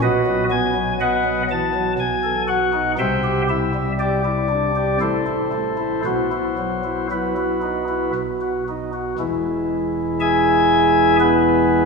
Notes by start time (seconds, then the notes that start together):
0.02 B1 B2 F#4 B4 D#5
0.26 F#3
0.50 B3 G#5
0.75 F#3
1.00 B3 B4 D#5 F#5
1.25 F#3
1.50 E3 A5
1.74 F#3
1.99 B1 B2 G#5
2.24 A4
2.48 F#4 F#5
2.73 D#4
2.98 C2 C3 C5 E5 G5
3.24 G4
3.49 E4 E5
3.74 G3
3.99 G4 D5
4.25 E4
4.49 D4
4.76 G4
5.00 A1 A2 E4 A4 C5
5.27 E4
5.53 A3
5.78 E4
6.05 B1 B2 E4 F#4 C5
6.32 E4
6.58 F#3
6.84 E4
7.11 F#3 E4 F#4 B4
7.36 E4
7.62 D#4
7.88 E4
8.15 B1 B2
8.41 F#4
8.69 D#4
8.93 F#4
9.19 E1 E2 E3 G#3 E4
10.20 G#4 E5 G#5
11.20 B3 G#4 B4